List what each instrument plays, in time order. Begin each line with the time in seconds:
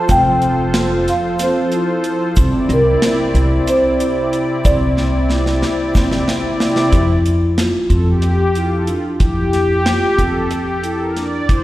Already playing: analog synth pad F3 F4 A4 C5, marimba A5
0.09 upright bass F1, vibraphone C4, marimba G5, kick, closed hi-hat, shaker
0.42 closed hi-hat
0.74 vibraphone F4, snare, closed hi-hat, shaker
1.08 vibraphone F4, marimba F5, snare, closed hi-hat
1.39 vibraphone C4, marimba C5, snare, closed hi-hat, shaker
1.72 vibraphone E4, closed hi-hat
2.04 closed hi-hat
2.36 upright bass C2, analog synth pad C3 C4 E4 D5, vibraphone C4, kick, closed hi-hat, shaker
2.69 upright bass C2, marimba A#4, closed hi-hat
3.02 vibraphone E4, snare, closed hi-hat, shaker
3.34 upright bass C2, vibraphone E4, closed hi-hat
3.67 vibraphone C4, marimba C5, closed hi-hat, shaker
3.99 vibraphone E4, closed hi-hat
4.33 closed hi-hat
4.65 upright bass C2, vibraphone C4, marimba D5, kick, closed hi-hat, shaker
4.97 snare
5.30 vibraphone E4, snare
5.46 snare
5.62 vibraphone E4, snare
5.95 vibraphone C4, kick, snare, shaker
6.12 snare
6.28 vibraphone E4, snare
6.60 snare, shaker
6.76 snare
6.92 upright bass F2, vibraphone E4, kick, closed hi-hat
7.26 closed hi-hat
7.57 vibraphone F4, snare, closed hi-hat
7.89 upright bass F2, vibraphone C4, analog synth pad A4, kick, closed hi-hat
8.06 analog synth pad G4
8.22 closed hi-hat
8.54 vibraphone E4, analog synth pad F4, closed hi-hat
8.70 analog synth pad A4
8.86 vibraphone D4, analog synth pad F4, closed hi-hat
9.18 upright bass F2, vibraphone E4, analog synth pad G4, kick, closed hi-hat
9.53 snare, closed hi-hat
9.85 vibraphone F4, snare, closed hi-hat
10.16 upright bass F2, vibraphone C4, analog synth pad A4, kick, closed hi-hat
10.48 analog synth pad G4, closed hi-hat
10.81 vibraphone E4, analog synth pad A4, closed hi-hat
10.99 analog synth pad A#4
11.15 vibraphone D4, analog synth pad D5, snare, closed hi-hat
11.47 upright bass C2, vibraphone E4, analog synth pad C5, kick, closed hi-hat